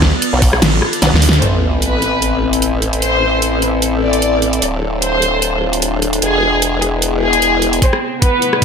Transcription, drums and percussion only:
0.02 kick medium
0.02 snare medium
0.22 closed hi-hat medium
0.22 crash soft
0.42 kick loud
0.42 open hi-hat medium
0.53 cross-stick medium
0.62 snare loud
0.62 closed hi-hat medium
0.62 crash medium
0.82 cross-stick medium
0.93 closed hi-hat medium
1.02 snare medium
1.02 closed hi-hat medium
1.02 crash soft
1.15 snare medium
1.22 open hi-hat loud
1.29 snare loud
1.33 closed hi-hat medium
1.42 closed hi-hat medium
1.82 closed hi-hat medium
2.02 closed hi-hat soft
2.22 closed hi-hat medium
2.53 closed hi-hat soft
2.62 closed hi-hat medium
2.82 closed hi-hat soft
2.93 closed hi-hat soft
3.02 closed hi-hat medium
3.42 closed hi-hat medium
3.62 closed hi-hat soft
3.82 closed hi-hat medium
4.13 closed hi-hat soft
4.22 closed hi-hat medium
4.42 closed hi-hat soft
4.53 closed hi-hat soft
4.62 closed hi-hat medium
5.02 closed hi-hat medium
5.22 closed hi-hat soft
5.42 closed hi-hat medium
5.73 closed hi-hat soft
5.82 closed hi-hat medium
6.02 closed hi-hat soft
6.13 closed hi-hat soft
6.22 closed hi-hat medium
6.62 closed hi-hat medium
6.82 closed hi-hat soft
7.02 closed hi-hat medium
7.33 closed hi-hat soft
7.42 closed hi-hat medium
7.62 closed hi-hat soft
7.73 closed hi-hat soft
7.82 kick medium
7.82 closed hi-hat medium
7.93 cross-stick medium
8.22 kick medium
8.22 closed hi-hat medium
8.42 closed hi-hat medium
8.53 cross-stick medium

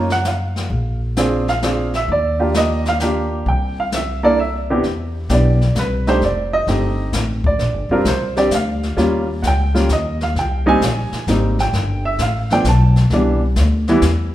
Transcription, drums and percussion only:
0.10 snare soft
0.25 snare medium
0.25 hi-hat pedal medium
0.56 snare soft
0.70 brush sweep soft
0.70 kick soft
1.17 snare medium
1.17 hi-hat pedal medium
1.48 snare soft
1.62 snare medium
1.62 hi-hat pedal medium
1.93 snare soft
2.08 brush sweep soft
2.08 kick soft
2.54 snare medium
2.54 hi-hat pedal medium
2.85 snare soft
3.00 snare medium
3.00 hi-hat pedal medium
3.46 brush sweep medium
3.46 kick soft
3.92 snare medium
3.92 hi-hat pedal medium
4.84 brush sweep soft
4.84 kick soft
4.84 snare soft
5.29 kick soft
5.29 snare medium
5.29 hi-hat pedal medium
5.61 snare soft
5.75 kick soft
5.75 snare medium
5.75 hi-hat pedal medium
6.07 snare soft
6.21 brush sweep soft
6.21 kick soft
6.21 snare soft
6.67 kick soft
6.67 snare soft
7.13 kick soft
7.13 snare medium
7.13 hi-hat pedal medium
7.44 kick medium
7.59 brush sweep soft
7.59 kick soft
7.59 snare soft
8.05 kick soft
8.05 snare medium
8.05 hi-hat pedal medium
8.36 snare soft
8.51 kick soft
8.51 snare medium
8.51 hi-hat pedal medium
8.83 snare soft
8.97 brush sweep soft
8.97 kick soft
8.97 snare soft
9.43 kick soft
9.43 snare medium
9.43 hi-hat pedal medium
9.75 snare soft
9.89 kick soft
9.89 snare medium
9.89 hi-hat pedal medium
10.21 snare soft
10.35 brush sweep medium
10.35 kick soft
10.35 snare soft
10.81 kick soft
10.81 snare medium
10.81 hi-hat pedal medium
11.12 snare soft
11.27 kick soft
11.27 snare medium
11.27 hi-hat pedal medium
11.59 snare soft
11.73 brush sweep soft
11.73 kick soft
11.73 snare soft
12.19 kick soft
12.19 snare medium
12.19 hi-hat pedal medium
12.50 snare soft
12.64 kick soft
12.64 snare medium
12.64 hi-hat pedal medium
12.96 snare soft
13.10 brush sweep soft
13.10 kick soft
13.10 snare soft
13.56 kick soft
13.56 snare medium
13.56 hi-hat pedal medium
13.88 snare soft
14.02 kick soft
14.02 snare medium
14.02 hi-hat pedal medium

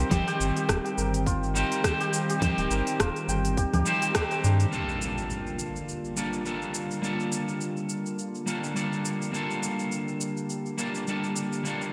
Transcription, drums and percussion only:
0.11 kick loud
0.11 open hi-hat medium
0.11 low conga medium
0.11 shaker soft
0.28 cross-stick soft
0.28 open hi-hat soft
0.28 shaker soft
0.41 shaker medium
0.57 open hi-hat soft
0.57 shaker soft
0.69 kick medium
0.69 cross-stick loud
0.69 open hi-hat medium
0.69 shaker soft
0.86 open hi-hat soft
0.86 shaker soft
0.98 shaker medium
1.14 open hi-hat soft
1.14 shaker soft
1.26 kick medium
1.26 open hi-hat medium
1.26 shaker soft
1.43 shaker soft
1.56 shaker medium
1.72 open hi-hat soft
1.72 shaker soft
1.84 kick loud
1.84 cross-stick medium
1.84 open hi-hat medium
1.84 shaker soft
2.01 open hi-hat soft
2.01 shaker soft
2.13 shaker medium
2.30 open hi-hat soft
2.30 shaker soft
2.42 kick loud
2.42 open hi-hat medium
2.42 low conga medium
2.42 shaker soft
2.58 open hi-hat soft
2.58 shaker soft
2.71 shaker medium
2.87 open hi-hat soft
2.87 shaker soft
3.00 kick loud
3.00 cross-stick loud
3.00 open hi-hat medium
3.00 shaker soft
3.16 open hi-hat soft
3.16 shaker soft
3.29 shaker medium
3.45 open hi-hat soft
3.45 shaker soft
3.57 kick loud
3.57 open hi-hat medium
3.57 shaker soft
3.74 cross-stick soft
3.74 open hi-hat soft
3.74 low conga medium
3.74 shaker soft
3.86 shaker medium
4.02 open hi-hat soft
4.02 shaker soft
4.15 kick loud
4.15 cross-stick loud
4.15 open hi-hat medium
4.15 shaker soft
4.31 open hi-hat soft
4.31 shaker soft
4.44 shaker medium
4.60 open hi-hat soft
4.60 shaker soft
4.73 shaker soft
4.89 shaker soft
5.02 shaker medium
5.18 shaker soft
5.30 shaker soft
5.47 shaker soft
5.59 shaker medium
5.76 shaker soft
5.89 shaker soft
6.05 shaker soft
6.17 shaker medium
6.33 shaker soft
6.46 shaker soft
6.62 shaker soft
6.74 shaker medium
6.91 shaker soft
7.04 shaker soft
7.20 shaker soft
7.32 shaker medium
7.48 shaker soft
7.61 shaker soft
7.77 shaker soft
7.89 shaker medium
8.06 shaker soft
8.19 shaker soft
8.35 shaker soft
8.47 shaker medium
8.64 shaker soft
8.76 shaker soft
8.93 shaker soft
9.05 shaker medium
9.22 shaker soft
9.34 shaker soft
9.51 shaker soft
9.63 shaker medium
9.79 shaker soft
9.92 shaker soft
10.08 shaker soft
10.21 shaker medium
10.37 shaker soft
10.50 shaker soft
10.66 shaker soft
10.78 shaker medium
10.95 shaker soft
11.07 shaker soft
11.24 shaker soft
11.36 shaker medium
11.53 shaker soft
11.65 shaker soft
11.81 shaker soft

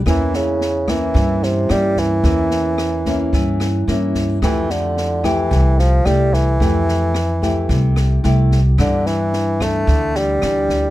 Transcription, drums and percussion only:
0.06 kick medium
0.06 cross-stick medium
0.06 snare soft
0.33 snare soft
0.61 snare soft
0.88 kick soft
0.88 cross-stick soft
0.88 snare soft
1.15 kick soft
1.15 snare soft
1.43 snare soft
1.69 cross-stick medium
1.69 snare soft
1.96 kick soft
1.96 snare soft
2.23 kick soft
2.23 snare soft
2.51 snare soft
2.78 cross-stick medium
2.78 snare soft
3.05 kick soft
3.05 snare soft
3.33 kick soft
3.33 snare soft
3.60 cross-stick medium
3.60 snare soft
3.87 snare soft
4.15 kick soft
4.15 snare soft
4.42 kick medium
4.42 cross-stick medium
4.42 snare soft
4.70 snare soft
4.97 snare soft
5.24 kick soft
5.24 cross-stick soft
5.24 snare soft
5.51 kick medium
5.51 snare soft
5.79 snare soft
6.05 cross-stick medium
6.05 snare soft
6.33 kick soft
6.33 snare soft
6.60 kick medium
6.60 snare soft
6.88 snare soft
7.14 cross-stick medium
7.14 snare soft
7.42 kick soft
7.42 snare soft
7.69 kick medium
7.69 snare soft
7.96 cross-stick medium
7.96 snare soft
8.23 snare soft
8.51 kick soft
8.51 snare soft
8.78 kick medium
8.78 cross-stick medium
8.78 snare soft
9.06 snare soft
9.33 snare soft
9.60 kick soft
9.60 cross-stick medium
9.60 snare soft
9.87 kick medium
9.87 snare soft
10.15 snare soft
10.42 cross-stick medium
10.42 snare soft
10.69 kick soft
10.69 snare soft

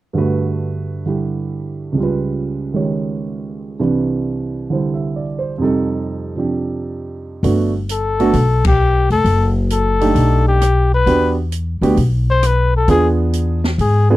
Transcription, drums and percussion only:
7.44 kick soft
7.44 open hi-hat soft
7.89 closed hi-hat soft
8.20 open hi-hat soft
8.33 kick soft
8.33 open hi-hat soft
8.65 kick medium
8.65 ride medium
9.10 open hi-hat soft
9.25 kick soft
9.25 open hi-hat soft
9.70 closed hi-hat soft
10.01 open hi-hat soft
10.16 kick soft
10.16 open hi-hat soft
10.62 cross-stick medium
10.62 closed hi-hat medium
11.07 kick soft
11.07 open hi-hat soft
11.52 closed hi-hat soft
11.83 open hi-hat soft
11.97 kick soft
11.97 open hi-hat soft
12.43 cross-stick medium
12.43 closed hi-hat soft
12.88 kick soft
12.88 open hi-hat soft
13.33 closed hi-hat soft
13.64 snare medium
13.79 kick soft
13.79 open hi-hat soft

